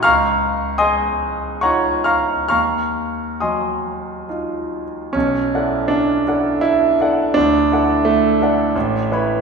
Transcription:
\new Staff \with { instrumentName = "Grand piano" } { \time 3/4 \key ees \dorian \tempo 4 = 81 << { <f'' bes'' des''' f'''>4 <ees'' aes'' c''' ees'''>4 <des'' ges'' bes'' des'''>8 <f'' bes'' des''' f'''>8 | <f'' bes'' des''' f'''>4 <ees'' aes'' c''' ees'''>4 r4 | \key b \minor cis'4 d'4 e'4 | d'4 a2 | } \\ { des,4 aes4 <ees' f'>4 | ees,4 ges4 <ees' f'>4 | b,,8 <e' a' d'' fis''>4 <e' a' d'' fis''>4 <e' a' d'' fis''>8 | d,8 <e' a' d'' fis''>4 <e' a' d'' fis''>8 a,,8 <e' b' cis'' b''>8 | } >> }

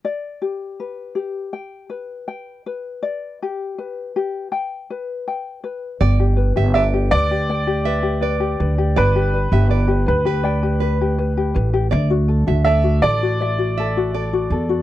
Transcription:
<<
  \new Staff \with { instrumentName = "Nylon-string guitar" } { \time 4/4 \key g \major \tempo 4 = 81 r1 | r1 | d''16 r8 e''16 d''8 d''16 r8. e''8 d''8. r16 | d''8 r16 e''16 d''16 r8 b'8 r16 b'16 r4 r16 |
d''16 r8 e''16 d''8 d''16 r8. e''8 d''8. r16 | }
  \new Staff \with { instrumentName = "Upright piano" } { \time 4/4 \key g \major r1 | r1 | r4 e''8 d''2~ d''8 | b'4. b'2 r8 |
r4 e''8 d''2~ d''8 | }
  \new Staff \with { instrumentName = "Ukulele" } { \time 4/4 \key g \major d''8 g'8 b'8 g'8 g''8 b'8 g''8 b'8 | d''8 g'8 b'8 g'8 g''8 b'8 g''8 b'8 | <d'' g''>16 g'16 b'16 g'16 b'16 g'16 b'16 g'16 <d'' g''>16 g'16 b'16 g'16 b'16 g'16 b'16 g'16 | <d'' g''>16 g'16 b'16 g'16 b'16 g'16 b'16 g'16 <d'' g''>16 g'16 b'16 g'16 b'16 g'16 b'16 g'16 |
<d'' e''>16 fis'16 a'16 fis'16 a'16 fis'16 a'16 fis'16 <d'' e''>16 fis'16 a'16 fis'16 a'16 fis'16 a'16 fis'16 | }
  \new Staff \with { instrumentName = "Upright bass" } { \clef bass \time 4/4 \key g \major r1 | r1 | g,,8. g,,8. d,2 d,8 | g,,8. g,,8. d,2 a,,8 |
d,8. d,8. a,,2 e,8 | }
>>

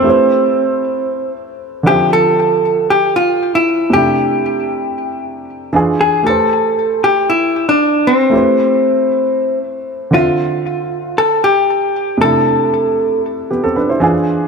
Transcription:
<<
  \new Staff \with { instrumentName = "Hollow-body jazz guitar" } { \time 4/4 \key a \minor \tempo 4 = 116 c'2~ c'8 r4 g'8 | a'4. g'8 f'8. e'8. g'8~ | g'2~ g'8 r4 gis'8 | a'4. g'8 e'8. d'8. c'8~ |
c'2~ c'8 r4 f'8~ | f'4. a'8 g'4. a'8~ | a'4. r2 r8 | }
  \new Staff \with { instrumentName = "Grand piano" } { \time 4/4 \key a \minor << { r1 | r1 | r1 | r1 |
r1 | r1 | r2 <b g'>16 <c' a'>16 <d' b'>16 <e' c''>8 r8. | } \\ { <a e' g' b' c''>2.~ <a e' g' b' c''>8 <d f c' e''>8~ | <d f c' e''>2.~ <d f c' e''>8 <c a d' e'>8~ | <c a d' e'>2. <e d' f' gis'>4 | <a g' b' c''>1 |
<a e' g' b' c''>2.~ <a e' g' b' c''>8 <d c' f' e''>8~ | <d c' f' e''>2.~ <d c' f' e''>8 <c a d' e'>8~ | <c a d' e'>2. <e d' f' gis'>4 | } >> }
>>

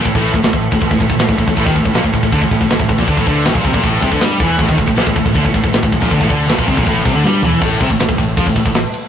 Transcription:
<<
  \new Staff \with { instrumentName = "String section" } { \time 4/4 \key a \minor \tempo 4 = 159 <a e' b' c''>1~ | <a e' b' c''>1~ | <a e' b' c''>1~ | <a e' b' c''>1~ |
<a e' b' c''>1 | <a e' b' c''>1 | }
  \new Staff \with { instrumentName = "Distorted electric guitar" } { \clef bass \time 4/4 \key a \minor a,16 a,8 a,16 a,16 a,8 a,16 a,16 a,16 a,16 a,16 a,16 a,16 a,16 a,16 | a,16 dis16 a,16 a,16 bes,16 a,16 a,16 a,16 d16 a,16 a,16 a,16 a,16 a,16 a,16 bes,16 | d16 a,16 d8 a,16 bes,16 c16 bes,16 a,8 c16 d16 g8 e8 | a,16 dis16 a,16 a,16 bes,16 a,16 a,16 a,16 d16 a,16 a,16 a,16 a,16 a,16 a,16 bes,16 |
d16 a,16 d8 a,16 bes,16 c16 bes,16 a,8 c16 d16 g8 e8 | a,8 c16 a,16 a,16 a,16 a,8 f16 a,16 a,16 a,8 r8. | }
  \new Staff \with { instrumentName = "Distorted electric guitar" } { \clef bass \time 4/4 \key a \minor a,16 a,8 a,16 a,16 a,8 a,16 a,16 a,16 a,16 a,16 a,16 a,16 a,16 a,16 | a,16 dis16 a,16 a,16 bes,16 a,16 a,16 a,16 d16 a,16 a,16 a,16 a,16 a,16 a,16 bes,16 | d16 a,16 d8 a,16 bes,16 c16 bes,16 a,8 c16 d16 g8 e8 | a,16 dis16 a,16 a,16 bes,16 a,16 a,16 a,16 d16 a,16 a,16 a,16 a,16 a,16 a,16 bes,16 |
d16 a,16 d8 a,16 bes,16 c16 bes,16 a,8 c16 d16 g8 e8 | a,8 c16 a,16 a,16 a,16 a,8 f16 a,16 a,16 a,8 r8. | }
  \new Staff \with { instrumentName = "Distorted electric guitar" } { \clef bass \time 4/4 \key a \minor a,16 a,8 a,16 a,16 a,8 a,16 a,16 a,16 a,16 a,16 a,16 a,16 a,16 a,16 | a,16 dis16 a,16 a,16 bes,16 a,16 a,16 a,16 d16 a,16 a,16 a,16 a,16 a,16 a,16 bes,16 | d16 a,16 d8 a,16 bes,16 c16 bes,16 a,8 c16 d16 g8 e8 | a,16 dis16 a,16 a,16 bes,16 a,16 a,16 a,16 d16 a,16 a,16 a,16 a,16 a,16 a,16 bes,16 |
d16 a,16 d8 a,16 bes,16 c16 bes,16 a,8 c16 d16 g8 e8 | a,8 c16 a,16 a,16 a,16 a,8 f16 a,16 a,16 a,8 r8. | }
  \new Staff \with { instrumentName = "Fingered electric bass" } { \clef bass \time 4/4 \key a \minor a,,16 a,,8 a,,16 a,,16 a,,8 a,,16 a,,16 a,,16 a,,16 a,,16 a,,16 a,,16 a,,16 a,,16 | a,,16 dis,16 a,,16 a,,16 bes,,16 a,,16 a,,16 a,,16 d,16 a,,16 a,,16 a,,16 a,,16 a,,16 a,,16 bes,,16 | d,16 a,,16 d,8 a,,16 bes,,16 c,16 bes,,16 a,,8 c,16 d,16 g,8 e,8 | a,,16 dis,16 a,,16 a,,16 bes,,16 a,,16 a,,16 a,,16 d,16 a,,16 a,,16 a,,16 a,,16 a,,16 a,,16 bes,,16 |
d,16 a,,16 d,8 a,,16 bes,,16 c,16 bes,,16 a,,8 c,16 d,16 g,8 e,8 | a,,8 c,16 a,,16 a,,16 a,,16 a,,8 f,16 a,,16 a,,16 a,,8 r8. | }
  \new DrumStaff \with { instrumentName = "Drums" } \drummode { \time 4/4 <cymc bd>16 bd16 cymc16 bd16 <cymc sn>16 bd16 cymc16 bd16 <cymc bd>16 bd16 <cymc bd>16 bd16 <cymc sn>16 bd16 <cymc bd>16 bd16 | <cymc bd>16 bd16 <cymc bd>16 bd16 <cymc sn>16 bd16 <cymc bd>16 bd16 <cymc bd>16 bd16 <cymc bd>16 bd16 <cymc sn>16 bd16 <cymc bd>16 bd16 | <cymc bd>16 bd16 <cymc bd>8 <cymc sn>16 bd16 <cymc bd>16 bd16 <cymc bd>8 <cymc bd>16 bd16 <cymc sn>8 <cymc bd>8 | <cymc bd>16 bd16 <cymc bd>16 bd16 <cymc sn>16 bd16 <cymc bd>16 bd16 <cymc bd>16 bd16 <cymc bd>16 bd16 <cymc sn>16 bd16 <cymc bd>16 bd16 |
<cymc bd>16 bd16 <cymc bd>8 <cymc sn>16 bd16 <cymc bd>16 bd16 <cymc bd>8 <cymc bd>8 sn8 tomfh8 | <cymc bd>8 <bd cymr>16 bd16 <cymr sn>16 bd16 <bd cymr>8 <bd cymr>16 bd16 <bd cymr>16 bd16 <cymr sn>8 cymr8 | }
>>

